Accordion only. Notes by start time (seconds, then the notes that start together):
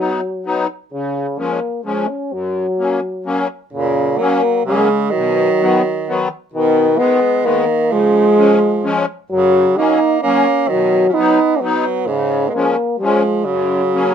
0.00 F#3 B3 D#4
0.44 F#3 B3 D#4
0.92 C#3
1.37 F3 G#3 C#4
1.83 F3 G#3 C#4
2.32 F#2
2.78 F#3 A#3 C#4
3.24 F#3 A#3 C#4
3.73 F#2
4.19 F#3 A#3 C#4
4.66 F#3 A#3 C#4
5.15 B2
5.60 D#3 F#3 B3
6.07 D#3 F#3 B3
6.53 B2
6.97 D#3 G#3 B3
7.42 D#3 G#3 B3
7.90 C#3
8.37 F3 G#3 C#4
8.83 F3 G#3 C#4
9.30 F#2
9.77 F#3 A#3 C#4
10.24 F#3 A#3 C#4
10.71 B2
11.17 F#3 B3 D#4
11.62 F#3 B3 D#4
12.10 C#3
12.54 F3 G#3 C#4
13.00 F3 G#3 C#4
13.48 F#2
13.93 F#3 A#3 C#4